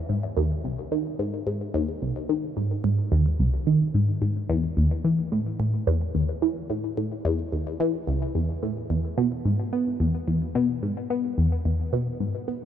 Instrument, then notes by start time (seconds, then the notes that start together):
synth arpeggio sound
0.09 G#2
0.37 D#2
0.64 C2
0.92 D#3
1.19 G#2
1.47 G#2
1.74 D#2
2.02 C2
2.29 D#3
2.57 G#2
2.84 G#2
3.12 D#2
3.39 C2
3.67 D#3
3.94 G#2
4.22 G#2
4.50 E2
4.77 D#2
5.05 E3
5.32 A2
5.60 A2
5.87 E2
6.15 D#2
6.42 E3
6.70 A2
6.97 A2
7.25 E2
7.52 D#2
7.80 E3
8.07 C#2
8.35 E2
8.63 A2
8.90 E2
9.18 B2
9.45 G#2
9.73 B3
10.00 E2
10.28 E2
10.55 B2
10.83 G#2
11.10 B3
11.38 E2
11.65 E2
11.93 B2
12.20 G#2
12.48 B3